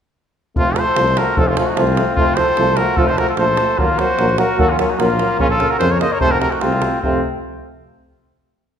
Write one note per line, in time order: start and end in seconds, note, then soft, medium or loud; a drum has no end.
0.56 0.79 F1 medium
0.56 0.65 F3 medium
0.56 0.64 A3 medium
0.56 0.81 C4 medium
0.56 0.80 F4 medium
0.56 davul low loud
0.76 0.85 F3 medium
0.76 0.85 A3 soft
0.76 1.20 A4 medium
0.76 1.20 C5 medium
0.76 davul high medium
0.96 1.19 C2 medium
0.96 1.04 F3 medium
0.96 1.05 A3 medium
0.96 davul high medium
1.07 davul high soft
1.16 1.24 F3 soft
1.16 1.25 A3 medium
1.16 1.40 F#4 medium
1.16 1.40 A#4 medium
1.16 davul high medium
1.37 1.59 F1 medium
1.37 1.45 F3 medium
1.37 1.46 A3 medium
1.37 1.51 F4 medium
1.37 1.50 A4 medium
1.37 davul low loud
1.48 1.58 C#4 soft
1.48 1.57 F4 medium
1.57 1.65 F3 medium
1.57 1.65 A3 medium
1.57 1.71 C#4 medium
1.57 1.68 F4 medium
1.57 davul high medium
1.66 1.81 D#4 medium
1.66 1.78 F#4 medium
1.76 1.99 C2 loud
1.76 1.85 F3 medium
1.76 1.85 A3 medium
1.76 2.17 C4 medium
1.76 2.15 F4 medium
1.76 davul high medium
1.87 davul high soft
1.97 2.05 F3 soft
1.97 2.05 A3 medium
1.97 davul high medium
2.15 2.39 F1 medium
2.15 2.26 F3 medium
2.15 2.25 A3 medium
2.15 2.41 C4 medium
2.15 2.37 F4 medium
2.15 davul low loud
2.36 2.45 F3 medium
2.36 2.46 A3 soft
2.36 2.81 A4 medium
2.36 2.78 C5 medium
2.36 davul high medium
2.57 2.80 C2 medium
2.57 2.66 F3 medium
2.57 2.66 A3 medium
2.57 davul high medium
2.67 davul high soft
2.76 2.85 F3 soft
2.76 2.86 A3 medium
2.76 3.00 F#4 medium
2.76 2.98 A#4 medium
2.76 davul high medium
2.97 3.20 F1 medium
2.97 3.05 F3 medium
2.97 3.06 A3 medium
2.97 3.12 F4 medium
2.97 3.09 A4 medium
2.97 davul low loud
3.07 3.21 A4 medium
3.07 3.20 C5 medium
3.07 davul high soft
3.17 3.25 F3 soft
3.17 3.26 A3 medium
3.17 3.29 F#4 medium
3.17 3.28 A#4 medium
3.17 davul high medium
3.29 3.34 F4 medium
3.29 3.33 A4 medium
3.29 davul high soft
3.37 3.60 A#1 medium
3.37 3.47 F3 medium
3.37 3.46 A3 medium
3.37 3.80 A4 medium
3.37 3.80 C5 medium
3.37 davul high medium
3.48 davul high soft
3.57 3.67 F3 soft
3.57 3.66 A3 soft
3.57 davul high medium
3.69 davul high soft
3.78 4.00 D#2 medium
3.78 3.86 F#3 medium
3.78 4.01 A#3 medium
3.78 3.87 A#3 medium
3.78 4.01 F4 medium
3.78 davul low medium
3.99 4.07 F#3 soft
3.99 4.07 A#3 medium
3.99 4.39 F#4 medium
3.99 4.38 C5 medium
3.99 davul high medium
4.18 4.40 A#1 medium
4.18 4.27 F#3 medium
4.18 4.27 A#3 medium
4.18 davul high medium
4.29 davul high soft
4.37 4.46 F#3 medium
4.37 4.47 A#3 medium
4.37 4.60 F#4 medium
4.37 4.61 A#4 medium
4.37 davul high medium
4.57 4.81 D#2 medium
4.57 4.66 F#3 medium
4.57 4.66 A#3 medium
4.57 4.72 F#4 medium
4.57 4.71 A4 medium
4.57 davul low loud
4.70 4.79 C#4 medium
4.70 4.79 F4 medium
4.78 4.86 F#3 medium
4.78 4.86 A#3 medium
4.78 4.90 C#4 medium
4.78 4.92 F4 medium
4.78 davul high medium
4.89 5.01 D#4 soft
4.89 5.01 F#4 medium
4.98 5.21 A#1 medium
4.98 5.07 F#3 medium
4.98 5.06 A#3 medium
4.98 5.39 A#3 medium
4.98 5.39 F4 loud
4.98 davul high medium
5.10 davul high soft
5.18 5.28 F#3 medium
5.18 5.26 A#3 medium
5.18 davul high medium
5.38 5.62 A#1 medium
5.38 5.47 C#3 medium
5.38 5.47 A#3 medium
5.38 5.49 C#4 medium
5.38 5.49 F4 medium
5.38 davul low medium
5.50 5.73 F4 medium
5.50 5.72 A4 medium
5.58 5.68 C#3 medium
5.58 5.67 A#3 medium
5.58 davul high medium
5.70 5.79 F#4 medium
5.70 5.78 A#4 medium
5.78 6.03 F2 medium
5.78 5.87 C#3 medium
5.78 5.87 A#3 medium
5.78 5.92 F4 medium
5.78 5.93 C5 medium
5.78 davul high medium
5.90 6.00 A#4 medium
5.90 6.00 C#5 medium
5.90 davul high soft
5.99 6.07 C#3 soft
5.99 6.08 A#3 medium
5.99 6.14 C5 medium
5.99 6.14 D#5 medium
5.99 davul high medium
6.12 6.20 A#4 medium
6.12 6.20 C#5 medium
6.20 6.44 F1 medium
6.20 6.28 C3 medium
6.20 6.28 A3 medium
6.20 6.34 A4 medium
6.20 6.33 C5 loud
6.20 davul low medium
6.31 6.39 F#4 medium
6.31 6.40 A#4 medium
6.38 6.47 C3 soft
6.38 6.48 A3 soft
6.38 6.53 F#4 medium
6.38 6.53 A#4 medium
6.38 davul high medium
6.51 6.60 D#4 medium
6.51 6.60 F#4 medium
6.51 davul high soft
6.60 6.84 C2 medium
6.60 6.69 C3 medium
6.60 6.69 A3 medium
6.60 6.99 C4 medium
6.60 6.99 F4 medium
6.60 davul high medium
6.72 davul high soft
6.81 6.90 C3 soft
6.81 6.89 A3 soft
6.81 davul high medium
7.02 7.21 F1 medium
7.02 7.21 C3 medium
7.02 7.21 A3 medium
7.02 7.21 C4 medium
7.02 7.21 F4 medium
7.02 davul low medium